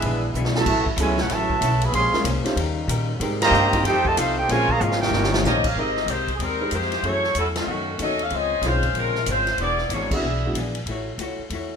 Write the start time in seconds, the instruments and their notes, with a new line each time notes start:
Already playing: trombone section D3 G#3 B3 E4, trumpet section D4 G#4 B4 E5
0.02 upright bass A#1, hollow-body jazz guitar E3 B3, ride
0.07 hollow-body jazz guitar D4 G#4
0.34 upright bass B1, hollow-body jazz guitar E3 B3 D4 G#4, hi-hat pedal
0.45 snare
0.55 trombone section E3 F#3 A3, grand piano F#3 B3 C#4 E4 A4, trumpet section F#4 C#5 E5 A5, snare
0.64 upright bass A1, hollow-body jazz guitar A2 F#3, trombone section C#3 F#3 A3, kick, crash
0.69 hollow-body jazz guitar C#4 E4
0.86 kick
0.97 upright bass C#2, hollow-body jazz guitar A2 F#3 C#4, grand piano F#3 B3 C#4 E4 A4, trombone section G#3, hi-hat pedal, ride
1.01 hollow-body jazz guitar E4, trumpet section E4 A4 C#5 G#5
1.18 trombone section F#3 C#4 F#4, snare
1.22 trumpet section E4 A4 C#5 F#5
1.28 upright bass A1, hollow-body jazz guitar A2 F#3, snare, ride
1.32 trombone section E3 F#3 A3, hollow-body jazz guitar C#4 E4, trumpet section F#4 C#5 E5 A5
1.50 kick
1.61 upright bass B1, hollow-body jazz guitar A2 F#3 C#4 E4, hi-hat pedal, ride
1.81 trombone section B3, trumpet section G#4 C#5 E5 B5, ride
1.91 upright bass A#1, trombone section A#2 F3 G#3 A#3 C#5, hollow-body jazz guitar A#3 C#4 G#4, ride
1.96 trombone section C3, trumpet section G#4 C#5 F5 C6, hollow-body jazz guitar C5
2.13 grand piano G#3 C4 C#4 F4 A#4, muted upright bass stroke, snare
2.24 upright bass C2, hollow-body jazz guitar A#3 C#4 G#4 C5, hi-hat pedal, ride
2.44 grand piano G3 C#4 D#4 F4 C5, snare, ride
2.56 upright bass D#2, trombone section C#3 G3 D#4, hollow-body jazz guitar D#3 C#4 G4, ride
2.60 hollow-body jazz guitar A#4
2.88 upright bass A#2, hollow-body jazz guitar D#3 C#4 G4 A#4, hi-hat pedal, ride
3.20 upright bass G#2, trombone section C3 G3 A#3 G4, hollow-body jazz guitar G#3 C4 G4 A#4, grand piano G#3 C4 D#4 G4 A#4, ride
3.42 trombone section D#3 G3 A#3, trumpet section G4 C5 D#5 A#5, snare, ride
3.51 upright bass G2, hollow-body jazz guitar G#3 C4 G4 A#4, hi-hat pedal
3.73 grand piano G3 C4 D#4 F4 G4, kick, ride
3.81 upright bass F2, trombone section D#3 A3 C4 F4, hollow-body jazz guitar F3 C4, snare, ride
3.85 hollow-body jazz guitar D#4 A4, trumpet section D#4 A4 C5 G5, trombone section G4
4.05 trombone section C3 A3, trumpet section F4 C5 D#5 A5, kick
4.09 trombone section D#3
4.17 upright bass C2, hollow-body jazz guitar F3 C4 D#4 A4, trombone section A3 C4 F4, trumpet section D#4 A4 C5 F5, hi-hat pedal, ride
4.38 trumpet section D#4 A4 C5 G5, trombone section G4
4.47 upright bass A#1, hollow-body jazz guitar A#2 G#3 C#4, trombone section C#3 G#3 A#3, grand piano G#3 C4, trumpet section F4 A#4 C#5 G#5, snare, ride
4.51 trombone section C#3 F3 G#3, grand piano C#4 F4 A#4, hollow-body jazz guitar F4
4.69 trombone section C#3 F3, trumpet section G#4 C#5 F5 A#5, kick
4.73 trombone section A#3
4.80 upright bass G#1, hollow-body jazz guitar A#2 G#3 C#4 F4, trombone section G#3 C#4 F4, trumpet section C#4 G#4 A#4 F5, hi-hat pedal
4.91 snare
5.02 trombone section A#3 C#4 G4, trumpet section D#4 A#4 C#5 G5, snare
5.10 upright bass G1, hollow-body jazz guitar D#3 A#3, trombone section G3 D#4, snare
5.15 hollow-body jazz guitar C#4 G4
5.24 snare
5.34 snare
5.43 upright bass A#1, hollow-body jazz guitar D#3 A#3 C#4 G4, grand piano G3 C#4 D#4 F4 C5, saxophone section C#4 G4 A#4 D#5, snare, hi-hat pedal
5.64 saxophone section C#4 G4 A#4 F5, kick, crash
5.74 upright bass G#1, hollow-body jazz guitar G#3 C4 G4, grand piano G#3 C4 D#4, saxophone section C4 G4
5.78 grand piano G4 A#4, hollow-body jazz guitar A#4, saxophone section A#4 D#5
5.97 snare
6.06 upright bass C2, hollow-body jazz guitar G#3 C4 G4, hi-hat pedal, ride
6.10 saxophone section A#3 D#4 G4 C5, hollow-body jazz guitar A#4
6.28 kick, ride
6.35 upright bass D#2, saxophone section G#4
6.40 saxophone section G3 C4 D#4 A#4, hollow-body jazz guitar G#3 C4 G4 A#4, ride
6.61 grand piano G#3 C4 D#4 G4 A#4
6.71 upright bass F2, hollow-body jazz guitar G#3 C4 G4 A#4, saxophone section A#3 D#4 G4 C5, hi-hat pedal, ride
6.82 snare
6.92 snare, ride
7.03 upright bass F#2, hollow-body jazz guitar F#2, grand piano A3 C#4 E4 F#4 G#4, saxophone section A3 E4 F#4 C#5, ride
7.07 hollow-body jazz guitar E3 A3 C#4
7.24 snare
7.35 upright bass E2, hollow-body jazz guitar F#2 E3 A3 C#4, saxophone section F#3 E4, hi-hat pedal, ride
7.39 saxophone section C#4 A4
7.56 saxophone section D#3 A3 C#4 F#4, snare, ride
7.67 upright bass F#2, hollow-body jazz guitar B2 D#3 A3
7.71 hollow-body jazz guitar C#4
7.98 upright bass D#2, hollow-body jazz guitar B2 D#3 A3 C#4, grand piano A3 B3 C#4 D#4 F#4, saxophone section D#5, hi-hat pedal, ride
8.02 saxophone section C#4 F#4 A4
8.19 saxophone section C#4 F#4 A4 F5, ride
8.30 upright bass C#2, hollow-body jazz guitar C#3 F3 G#3, ride
8.34 hollow-body jazz guitar C4, saxophone section C#4 G#4 C5 D#5
8.62 upright bass B1, hollow-body jazz guitar C#3 F3 G#3, grand piano G#3 C4 F4, snare, hi-hat pedal, ride
8.66 saxophone section G#3 C#4 F4 C5, hollow-body jazz guitar C4, grand piano C#4 D#4
8.83 kick, ride
8.94 upright bass A#1, hollow-body jazz guitar C#3 F3 G#3, ride
8.98 saxophone section G#3 C#4 F4 A#4, hollow-body jazz guitar C4
9.15 snare
9.26 upright bass G#1, hollow-body jazz guitar C#3 F3 G#3 C4, saxophone section G#3 C#4, hi-hat pedal, ride
9.30 saxophone section F4 C5
9.47 snare, ride
9.58 upright bass E1, hollow-body jazz guitar E3 B3, saxophone section B3 E4 G#4 D5, ride
9.62 hollow-body jazz guitar D4 G#4
9.78 snare
9.89 upright bass G#1, hollow-body jazz guitar E3 B3 D4, hi-hat pedal, ride
9.93 saxophone section A#3 D4 F#4 C#5, hollow-body jazz guitar G#4
10.11 grand piano G#3 B3 D4 E4 F#4, saxophone section D4 G#4 B4 E5, kick, crash
10.21 upright bass B1, hollow-body jazz guitar E3 B3
10.26 hollow-body jazz guitar D4 G#4
10.45 grand piano G#3 B3 D4 E4 F#4
10.53 upright bass A#1, hollow-body jazz guitar E3 B3 D4, hi-hat pedal, ride
10.59 hollow-body jazz guitar G#4
10.75 ride
10.86 upright bass A1, hollow-body jazz guitar A3 E4, ride
10.91 hollow-body jazz guitar F#4 C#5
11.18 upright bass C#2, hollow-body jazz guitar A3 E4 F#4 C#5, hi-hat pedal, ride
11.39 muted upright bass stroke
11.50 upright bass E2, hollow-body jazz guitar A3 E4, ride
11.54 hollow-body jazz guitar F#4 C#5